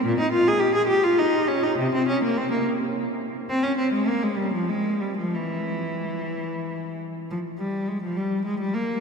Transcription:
0.05 0.19 A#2 medium
0.20 0.33 D#4 medium
0.33 0.47 F4 medium
0.48 0.61 G#4 medium
0.60 0.74 G4 medium
0.75 0.88 G#4 medium
0.88 1.02 G4 medium
1.04 1.18 F4 medium
1.18 1.47 D#4 medium
1.48 1.63 C#4 medium
1.64 1.78 D#4 medium
1.78 1.92 C3 medium
1.95 2.08 C4 medium
2.09 2.22 C#4 medium
2.24 2.36 A#3 medium
2.37 2.50 C4 medium
2.51 2.64 A#3 medium
3.49 3.63 C4 medium
3.63 3.78 C#4 medium
3.78 3.93 C4 medium
3.93 4.08 G#3 medium
4.08 4.23 A#3 medium
4.24 4.39 G#3 medium
4.37 4.54 G3 medium
4.54 4.69 F3 medium
4.69 5.01 G#3 medium
5.01 5.18 G3 medium
5.18 5.34 F3 medium
5.35 6.99 E3 medium
7.31 7.39 F3 medium
7.59 7.88 G3 medium
7.89 8.03 G#3 medium
8.03 8.17 F3 medium
8.17 8.47 G3 medium
8.46 8.60 G#3 medium
8.60 8.75 G3 medium
8.74 9.00 A#3 medium

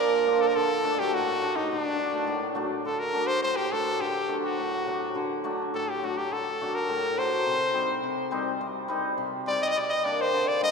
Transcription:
0.00 0.60 A#2 medium
0.00 0.25 F3 medium
0.00 0.43 A#4 medium
0.26 0.60 F3 medium
0.26 0.41 A#3 medium
0.26 0.41 D4 medium
0.41 0.49 A4 medium
0.47 0.57 A#4 medium
0.56 1.18 D3 medium
0.56 1.01 A4 loud
0.84 0.91 A3 medium
0.84 0.92 D4 medium
0.99 1.54 F#3 medium
0.99 1.14 A3 medium
0.99 1.14 D4 medium
0.99 1.16 G4 medium
1.13 1.75 A2 medium
1.13 1.58 F#4 medium
1.42 1.49 A3 medium
1.42 1.49 D4 medium
1.55 1.75 F#3 medium
1.55 1.70 A3 medium
1.55 1.71 D4 medium
1.55 1.70 D#4 medium
1.70 2.33 D3 medium
1.70 1.81 D#4 medium
1.81 2.56 D4 medium
1.99 2.06 A3 medium
1.99 2.07 D4 medium
2.12 2.54 F#3 medium
2.12 2.28 A3 medium
2.12 2.28 D4 medium
2.27 2.91 A2 medium
2.55 2.91 F#3 medium
2.55 2.70 A3 medium
2.55 2.71 D4 medium
2.85 3.48 D3 medium
2.85 3.01 A4 medium
2.99 3.29 A#4 medium
3.13 3.70 F#3 medium
3.13 3.29 A3 medium
3.13 3.29 D4 medium
3.27 3.42 C5 loud
3.43 4.06 A2 medium
3.43 3.58 C5 medium
3.56 3.74 G4 medium
3.71 4.06 F#3 medium
3.71 3.86 A3 medium
3.71 3.86 D4 medium
3.71 4.02 A4 medium
4.00 4.63 D3 medium
4.00 4.37 G4 medium
4.28 4.86 F#3 medium
4.28 4.44 A3 medium
4.28 4.44 D4 medium
4.37 4.46 G4 soft
4.44 5.31 F#4 medium
4.58 5.21 A2 medium
4.87 5.21 F#3 medium
4.87 5.02 A3 medium
4.87 5.02 D4 medium
5.15 5.79 D3 medium
5.44 6.02 F#3 medium
5.44 5.59 A3 medium
5.44 5.59 D4 medium
5.74 6.36 A2 medium
5.74 5.92 A4 medium
5.90 6.06 G4 medium
6.03 6.36 F#3 medium
6.03 6.17 A3 medium
6.03 6.17 D4 medium
6.03 6.19 F#4 medium
6.18 6.34 G4 medium
6.31 6.94 D3 medium
6.31 6.76 A4 medium
6.61 7.17 F#3 medium
6.61 6.75 A3 medium
6.61 6.75 D4 medium
6.75 7.20 A#4 medium
6.89 7.51 A2 medium
7.18 7.51 F#3 medium
7.18 7.32 A3 medium
7.18 7.32 D4 medium
7.18 8.04 C5 medium
7.46 8.02 C3 medium
7.74 8.30 G3 medium
7.74 7.89 C4 medium
7.74 7.89 D#4 medium
8.03 8.60 C3 medium
8.31 8.87 G3 medium
8.31 8.46 C4 medium
8.31 8.47 D#4 loud
8.61 9.16 C3 medium
8.88 9.46 G3 medium
8.88 9.03 C4 medium
8.88 9.04 D#4 loud
9.18 9.81 C3 medium
9.47 9.74 G3 medium
9.47 9.61 C4 medium
9.47 9.62 D#4 medium
9.47 9.64 D5 medium
9.62 9.70 D5 medium
9.62 9.66 D#5 medium
9.69 9.77 D#5 loud
9.75 10.03 G3 medium
9.75 9.91 D5 medium
9.90 10.06 D#5 loud
10.04 10.38 G3 medium
10.04 10.19 A#3 medium
10.04 10.19 D4 medium
10.04 10.23 D5 medium
10.21 10.50 C5 loud
10.32 10.71 D3 medium
10.48 10.62 D5 medium
10.61 10.71 G3 medium
10.61 10.71 A#3 medium
10.61 10.71 D4 medium
10.61 10.71 D#5 loud

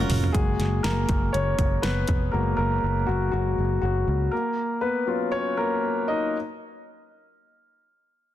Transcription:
0.00 0.31 F#3 medium
0.00 0.33 G#3 medium
0.00 0.34 A#3 medium
0.00 0.35 C#4 soft
0.00 0.35 F4 medium
0.00 0.36 F4 medium
0.00 0.33 F#4 medium
0.00 0.34 A#4 medium
0.00 0.36 A#4 medium
0.09 0.30 F1 medium
0.09 mid tom medium
0.09 open hi-hat medium
0.09 tambourine soft
0.24 floor tom medium
0.32 0.55 F#1 medium
0.32 0.81 G#3 medium
0.32 0.68 A#3 soft
0.32 0.69 F#4 medium
0.32 0.85 G#4 medium
0.32 kick loud
0.32 closed hi-hat medium
0.59 0.80 F#1 medium
0.59 snare soft
0.59 closed hi-hat medium
0.83 1.05 F#1 medium
0.83 1.31 A#3 medium
0.83 1.35 A#4 medium
0.83 snare loud
0.83 closed hi-hat medium
1.09 1.29 F#1 medium
1.09 kick medium
1.09 closed hi-hat medium
1.33 1.54 F#1 loud
1.33 1.81 C#4 medium
1.33 1.84 C#5 medium
1.33 closed hi-hat medium
1.59 1.79 F#1 medium
1.59 kick medium
1.59 closed hi-hat medium
1.82 2.04 F#1 medium
1.82 2.30 B3 soft
1.82 2.34 B4 medium
1.82 snare medium
1.82 closed hi-hat medium
2.08 2.29 F1 medium
2.08 kick medium
2.08 closed hi-hat medium
2.32 2.54 F#1 medium
2.32 3.31 G#3 soft
2.32 2.57 A#3 medium
2.32 3.05 F#4 medium
2.32 2.55 A#4 medium
2.57 2.78 F#1 medium
2.57 3.05 A#3 medium
2.57 3.09 A#4 medium
2.84 3.04 F#1 medium
3.06 3.29 F#1 medium
3.06 3.14 F#3 medium
3.06 3.12 F#4 medium
3.32 3.53 F#1 medium
3.32 3.79 F#3 medium
3.32 3.55 G#3 soft
3.32 3.55 A#3 soft
3.32 3.55 F#4 medium
3.58 3.78 F#1 medium
3.82 4.03 F#1 medium
3.82 4.29 F#3 medium
3.82 4.33 F#4 medium
4.08 4.28 C#2 medium
4.31 4.79 A#3 medium
4.31 4.78 A#4 medium
4.81 5.29 B3 medium
4.81 5.33 B4 medium
5.06 5.41 F#3 soft
5.06 5.32 C#4 soft
5.06 5.42 F4 medium
5.32 5.56 C#4 medium
5.32 5.58 C#5 medium
5.57 6.06 A#3 medium
5.57 6.10 A#4 medium
6.08 6.33 D#4 medium
6.08 6.33 D#5 medium

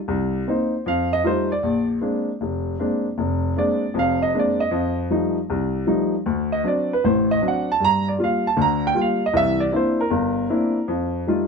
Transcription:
0.08 0.41 C2 medium
0.47 0.73 A#3 medium
0.47 0.74 C4 medium
0.47 0.74 D#4 medium
0.47 0.84 C5 medium
0.86 1.19 F2 medium
0.86 1.11 F5 medium
1.13 1.25 D#5 medium
1.24 1.50 G3 medium
1.24 1.51 A3 medium
1.24 1.51 D#4 medium
1.24 1.51 F4 medium
1.24 1.50 C5 medium
1.52 1.87 D5 medium
1.63 1.96 A#1 medium
2.01 2.28 G#3 medium
2.01 2.28 A#3 medium
2.01 2.28 C4 soft
2.01 2.28 D4 medium
2.41 2.74 F1 medium
2.79 3.05 G#3 medium
2.79 3.05 A#3 medium
2.79 3.06 C4 medium
2.79 3.06 D4 medium
3.18 3.51 F1 medium
3.57 3.83 G#3 medium
3.57 3.83 A#3 medium
3.57 3.83 C4 medium
3.57 3.83 D4 medium
3.57 3.93 D5 medium
3.94 4.28 F1 medium
3.94 4.28 F2 medium
3.99 4.21 F5 medium
4.22 4.34 D#5 medium
4.34 4.60 G#3 medium
4.34 4.60 A#3 medium
4.34 4.60 C4 medium
4.34 4.60 D4 medium
4.39 4.61 D5 medium
4.60 4.95 D#5 medium
4.71 5.05 F2 medium
5.10 5.37 F3 medium
5.10 5.37 G3 medium
5.10 5.37 A3 medium
5.10 5.37 D#4 medium
5.50 5.83 C2 medium
5.87 6.14 F3 medium
5.87 6.14 G3 soft
5.87 6.14 A3 medium
5.87 6.14 D#4 medium
6.26 6.59 D2 medium
6.52 6.65 D#5 medium
6.64 6.91 F#3 medium
6.64 6.91 C4 medium
6.64 6.91 D4 medium
6.64 6.91 D5 medium
6.93 7.05 B4 medium
7.04 7.37 A1 medium
7.04 7.37 A2 medium
7.04 7.28 C5 medium
7.31 7.43 D#5 medium
7.42 7.68 F#3 medium
7.42 7.68 C4 soft
7.42 7.69 D4 medium
7.48 7.69 F#5 medium
7.72 7.83 A5 medium
7.80 8.14 G2 medium
7.84 8.07 A#5 loud
8.08 8.20 D5 medium
8.19 8.45 G3 medium
8.19 8.46 A#3 soft
8.19 8.46 F4 medium
8.24 8.46 F5 medium
8.47 8.59 A5 medium
8.57 8.91 D2 medium
8.57 8.90 D3 medium
8.62 8.84 A#5 medium
8.87 8.98 G5 loud
8.95 9.22 G3 medium
8.95 9.22 A#3 medium
8.95 9.22 F4 medium
9.01 9.23 F5 medium
9.26 9.37 D#5 medium
9.33 9.67 C2 medium
9.33 9.67 E3 medium
9.33 9.60 E5 loud
9.60 9.73 D5 medium
9.72 9.99 A#3 medium
9.72 9.99 C4 medium
9.72 9.99 D4 medium
9.72 9.99 E4 medium
9.76 9.99 C5 medium
10.01 10.86 A#4 medium
10.10 10.44 G1 medium
10.50 10.76 A#3 medium
10.50 10.76 C4 medium
10.50 10.76 D4 medium
10.50 10.77 E4 medium
10.88 11.22 F2 medium
11.27 11.47 G3 medium
11.27 11.47 A3 medium
11.27 11.47 D#4 medium
11.27 11.47 F4 medium

